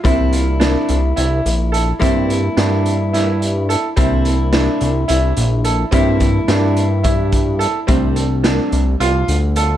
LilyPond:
<<
  \new Staff \with { instrumentName = "Grand piano" } { \time 7/8 \key c \mixolydian \tempo 4 = 107 c'4 d'4 e'4 a'8 | c'4 d'4 e'4 a'8 | c'4 d'4 e'4 a'8 | c'4 d'4 e'4 a'8 |
c'4 d'4 f'4 a'8 | }
  \new Staff \with { instrumentName = "Hollow-body jazz guitar" } { \time 7/8 \key c \mixolydian <g bes d' e'>2.~ <g bes d' e'>8 | <g bes d' e'>2.~ <g bes d' e'>8 | <g bes d' e'>2.~ <g bes d' e'>8 | <g bes d' e'>2.~ <g bes d' e'>8 |
<g a c' d'>2.~ <g a c' d'>8 | }
  \new Staff \with { instrumentName = "Analog synth bass" } { \clef bass \time 7/8 \key c \mixolydian c,4. c,8 c,8 bes,,4 | g,4 g,2~ g,8 | c,4. c,8 c,8 bes,,4 | g,4 g,2~ g,8 |
c,4. c,8 c,8 d,4 | }
  \new DrumStaff \with { instrumentName = "Drums" } \drummode { \time 7/8 <hh bd>8 hh8 <hh sn>8 hh8 hh8 hh8 hh8 | <hh bd>8 hh8 <hh sn>8 hh8 <hh sn>8 hh8 hh8 | <hh bd>8 hh8 <hh sn>8 hh8 hh8 hh8 hh8 | <hh bd>8 <hh bd>8 <hh sn>8 hh8 <hh bd>8 <hh bd>8 hh8 |
<hh bd>8 hh8 <hh sn>8 hh8 hh8 hh8 hh8 | }
>>